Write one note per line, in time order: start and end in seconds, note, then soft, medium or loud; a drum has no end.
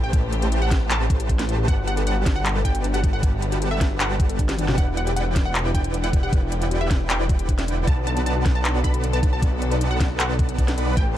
0.00 0.11 A1 loud
0.00 1.65 C3 medium
0.00 0.11 A3 loud
0.00 0.11 G4 medium
0.00 1.65 G4 loud
0.00 0.10 G4 medium
0.00 0.11 B4 medium
0.00 0.11 C5 medium
0.00 0.15 G5 medium
0.00 0.11 A5 loud
0.13 0.69 A1 loud
0.13 0.69 A3 medium
0.13 0.69 G4 medium
0.13 0.17 A4 medium
0.13 0.69 B4 medium
0.13 0.69 C5 medium
0.13 0.69 A5 loud
0.13 kick loud
0.13 closed hi-hat medium
0.23 0.32 B4 loud
0.32 0.39 E4 medium
0.32 closed hi-hat medium
0.42 0.48 G4 medium
0.42 closed hi-hat medium
0.52 0.61 E4 medium
0.52 closed hi-hat medium
0.61 0.68 G4 medium
0.61 0.78 F#5 medium
0.71 1.66 A1 loud
0.71 1.66 A3 loud
0.71 1.66 G4 medium
0.71 0.75 A4 medium
0.71 1.66 B4 medium
0.71 1.66 C5 medium
0.71 1.66 A5 loud
0.71 kick loud
0.71 snare medium
0.71 closed hi-hat medium
0.81 0.90 B4 loud
0.91 0.97 E4 medium
0.91 1.02 A5 loud
0.91 clap loud
0.91 closed hi-hat medium
1.00 1.06 G4 medium
1.10 1.19 E4 medium
1.10 kick loud
1.10 closed hi-hat medium
1.20 1.26 G4 medium
1.20 closed hi-hat medium
1.29 1.33 A4 medium
1.29 kick medium
1.29 closed hi-hat medium
1.39 1.48 B4 loud
1.39 snare medium
1.39 closed hi-hat medium
1.49 1.55 E4 medium
1.49 closed hi-hat medium
1.58 1.65 G4 medium
1.68 2.24 G1 loud
1.68 4.75 B2 medium
1.68 2.24 G3 medium
1.68 4.75 A3 medium
1.68 1.77 D4 medium
1.68 2.24 G4 medium
1.68 2.24 B4 medium
1.68 1.79 F#5 loud
1.68 2.24 F#5 medium
1.68 2.24 A5 loud
1.68 kick loud
1.68 closed hi-hat medium
1.78 1.84 F#4 medium
1.87 1.91 G4 medium
1.87 1.99 F#5 medium
1.87 closed hi-hat medium
1.97 2.06 A4 loud
1.97 closed hi-hat medium
2.07 2.13 D4 medium
2.07 2.24 F#5 medium
2.07 closed hi-hat medium
2.16 2.23 F#4 medium
2.26 3.21 G1 loud
2.26 3.21 G3 loud
2.26 2.35 D4 medium
2.26 3.21 G4 medium
2.26 3.21 B4 medium
2.26 3.21 F#5 medium
2.26 3.21 A5 loud
2.26 kick loud
2.26 snare medium
2.26 closed hi-hat medium
2.36 2.42 F#4 medium
2.36 2.53 F#5 loud
2.45 2.49 G4 medium
2.45 clap loud
2.45 closed hi-hat medium
2.55 2.64 A4 loud
2.65 2.71 D4 medium
2.65 2.82 G5 loud
2.65 kick medium
2.65 closed hi-hat medium
2.75 2.81 F#4 medium
2.75 closed hi-hat medium
2.84 2.93 D4 medium
2.84 closed hi-hat medium
2.94 3.00 F#4 medium
2.94 3.05 F#5 medium
2.94 closed hi-hat medium
3.04 3.07 G4 medium
3.04 kick loud
3.04 closed hi-hat medium
3.13 3.23 A4 loud
3.13 3.24 F#5 medium
3.23 3.79 G1 loud
3.23 3.79 G3 medium
3.23 3.29 D4 medium
3.23 3.79 G4 medium
3.23 3.79 B4 medium
3.23 3.79 F#5 medium
3.23 3.79 A5 loud
3.23 kick loud
3.23 closed hi-hat medium
3.33 3.39 F#4 medium
3.42 3.52 D4 medium
3.42 closed hi-hat medium
3.52 3.58 F#4 medium
3.52 closed hi-hat medium
3.62 3.65 G4 medium
3.62 closed hi-hat medium
3.71 3.81 A4 loud
3.71 3.88 E5 loud
3.81 4.76 G1 loud
3.81 4.76 G3 loud
3.81 3.87 D4 medium
3.81 4.75 G4 medium
3.81 4.75 B4 medium
3.81 4.76 F#5 medium
3.81 4.75 A5 loud
3.81 kick loud
3.81 snare medium
3.81 closed hi-hat medium
3.91 3.97 F#4 medium
4.00 4.10 D4 medium
4.00 4.12 F#5 medium
4.00 clap loud
4.00 closed hi-hat medium
4.10 4.16 F#4 medium
4.20 4.23 G4 medium
4.20 kick loud
4.20 closed hi-hat medium
4.29 4.39 A4 loud
4.29 closed hi-hat medium
4.39 4.45 D4 medium
4.39 kick medium
4.39 closed hi-hat medium
4.49 4.55 F#4 medium
4.49 snare medium
4.49 closed hi-hat medium
4.58 4.68 D4 medium
4.58 closed hi-hat medium
4.58 high tom medium
4.68 4.74 F#4 medium
4.68 snare medium
4.68 mid tom medium
4.78 5.34 E1 loud
4.78 10.93 D3 medium
4.78 7.84 G3 medium
4.78 4.87 D4 medium
4.78 5.34 E4 medium
4.78 5.34 B4 medium
4.78 5.34 D5 medium
4.78 4.89 F#5 loud
4.78 5.34 F#5 medium
4.78 5.34 G5 loud
4.78 kick loud
4.78 closed hi-hat medium
4.88 4.94 E4 medium
4.97 5.01 F#4 medium
4.97 5.08 F#5 medium
4.97 closed hi-hat medium
5.07 5.16 G4 loud
5.07 closed hi-hat medium
5.16 5.23 D4 medium
5.16 5.33 F#5 medium
5.16 closed hi-hat medium
5.26 5.32 E4 medium
5.36 6.31 E1 medium
5.36 5.45 D4 medium
5.36 6.30 E4 loud
5.36 6.30 B4 medium
5.36 6.30 D5 medium
5.36 6.30 F#5 medium
5.36 6.30 G5 loud
5.36 kick loud
5.36 snare medium
5.36 closed hi-hat medium
5.45 5.52 E4 medium
5.45 5.62 F#5 loud
5.55 5.59 F#4 medium
5.55 clap loud
5.55 closed hi-hat medium
5.65 5.74 G4 loud
5.75 5.81 D4 medium
5.75 5.91 G5 loud
5.75 kick medium
5.75 closed hi-hat medium
5.84 5.90 E4 medium
5.84 closed hi-hat medium
5.94 6.03 D4 medium
5.94 closed hi-hat medium
6.04 6.10 E4 medium
6.04 6.15 F#5 medium
6.04 closed hi-hat medium
6.13 6.17 F#4 medium
6.13 kick loud
6.13 closed hi-hat medium
6.23 6.32 G4 loud
6.23 6.34 F#5 medium
6.33 6.89 E1 loud
6.33 6.39 D4 medium
6.33 6.88 E4 medium
6.33 6.88 B4 medium
6.33 6.88 D5 medium
6.33 6.88 F#5 medium
6.33 6.88 G5 loud
6.33 kick loud
6.33 closed hi-hat medium
6.42 6.48 E4 medium
6.52 6.61 D4 medium
6.52 closed hi-hat medium
6.62 6.68 E4 medium
6.62 closed hi-hat medium
6.71 6.75 F#4 medium
6.71 closed hi-hat medium
6.81 6.90 G4 loud
6.81 6.98 E5 loud
6.91 7.86 E1 loud
6.91 6.97 D4 medium
6.91 7.85 E4 loud
6.91 7.85 B4 medium
6.91 7.85 D5 medium
6.91 7.85 F#5 medium
6.91 7.85 G5 loud
6.91 kick loud
6.91 snare medium
6.91 closed hi-hat medium
7.00 7.07 E4 medium
7.10 7.19 D4 medium
7.10 7.21 G5 medium
7.10 clap loud
7.10 closed hi-hat medium
7.20 7.26 E4 medium
7.29 7.33 F#4 medium
7.29 kick loud
7.29 closed hi-hat medium
7.39 7.48 G4 loud
7.39 closed hi-hat medium
7.49 7.55 D4 medium
7.49 kick medium
7.49 closed hi-hat medium
7.58 7.65 E4 medium
7.58 snare medium
7.58 closed hi-hat medium
7.68 7.77 D4 medium
7.68 closed hi-hat medium
7.78 7.84 E4 medium
7.87 8.44 B1 loud
7.87 8.43 B3 medium
7.87 7.91 A4 medium
7.87 10.94 A4 loud
7.87 8.43 B4 medium
7.87 8.43 D5 medium
7.87 8.43 F#5 medium
7.87 7.99 A5 loud
7.87 8.43 A5 loud
7.87 kick loud
7.87 closed hi-hat medium
7.97 8.06 B4 loud
8.07 8.13 D4 medium
8.07 8.18 A5 medium
8.07 closed hi-hat medium
8.17 8.23 F#4 medium
8.17 closed hi-hat medium
8.26 8.35 D4 medium
8.26 8.43 A5 medium
8.26 closed hi-hat medium
8.36 8.42 F#4 medium
8.45 9.40 B1 loud
8.45 9.40 B3 loud
8.45 8.49 A4 medium
8.45 9.40 B4 medium
8.45 9.40 D5 medium
8.45 9.40 F#5 medium
8.45 9.40 A5 loud
8.45 kick loud
8.45 snare medium
8.45 closed hi-hat medium
8.55 8.64 B4 loud
8.55 8.72 A5 loud
8.65 8.71 D4 medium
8.65 clap loud
8.65 closed hi-hat medium
8.75 8.81 F#4 medium
8.84 8.94 D4 medium
8.84 9.01 B5 loud
8.84 kick medium
8.84 closed hi-hat medium
8.94 9.00 F#4 medium
8.94 closed hi-hat medium
9.04 9.07 A4 medium
9.04 closed hi-hat medium
9.13 9.22 B4 loud
9.13 9.24 A5 loud
9.13 closed hi-hat medium
9.23 9.29 D4 medium
9.23 kick loud
9.23 closed hi-hat medium
9.33 9.39 F#4 medium
9.33 9.44 A5 loud
9.42 9.98 B1 loud
9.42 9.98 B3 loud
9.42 9.52 D4 medium
9.42 9.98 B4 medium
9.42 9.98 D5 medium
9.42 9.98 F#5 medium
9.42 9.98 A5 loud
9.42 kick loud
9.42 closed hi-hat medium
9.52 9.58 F#4 medium
9.62 9.65 A4 medium
9.62 closed hi-hat medium
9.71 9.81 B4 loud
9.71 closed hi-hat medium
9.81 9.87 D4 medium
9.81 closed hi-hat medium
9.91 9.97 F#4 medium
9.91 10.07 F#5 loud
10.00 10.57 B1 medium
10.00 10.57 B3 loud
10.00 10.10 D4 medium
10.00 10.57 B4 medium
10.00 10.57 D5 medium
10.00 10.57 F#5 medium
10.00 10.57 A5 loud
10.00 kick loud
10.00 snare medium
10.00 closed hi-hat medium
10.10 10.16 F#4 medium
10.19 10.23 A4 medium
10.19 10.31 F#5 loud
10.19 clap loud
10.19 closed hi-hat medium
10.29 10.39 B4 loud
10.39 10.45 D4 medium
10.39 kick loud
10.39 closed hi-hat medium
10.49 10.55 F#4 medium
10.49 closed hi-hat medium
10.58 10.76 B1 medium
10.58 10.68 B3 loud
10.58 10.68 D4 medium
10.58 10.68 B4 medium
10.58 10.68 D5 medium
10.58 10.68 F#5 medium
10.58 10.68 A5 loud
10.58 kick medium
10.58 closed hi-hat medium
10.68 10.74 F#4 medium
10.68 snare medium
10.68 closed hi-hat medium
10.78 10.95 B1 loud
10.78 10.95 B3 medium
10.78 10.82 A4 medium
10.78 10.95 B4 medium
10.78 10.95 D5 medium
10.78 10.95 F#5 medium
10.78 10.95 B5 loud
10.78 closed hi-hat medium
10.88 10.97 B4 loud
10.97 11.18 A1 loud
10.97 11.18 C3 medium
10.97 11.18 A3 medium
10.97 11.03 E4 medium
10.97 11.18 G4 medium
10.97 11.18 B4 medium
10.97 11.18 C5 medium
10.97 11.08 G5 loud
10.97 11.18 A5 loud
10.97 kick loud
10.97 closed hi-hat medium
11.07 11.13 G4 medium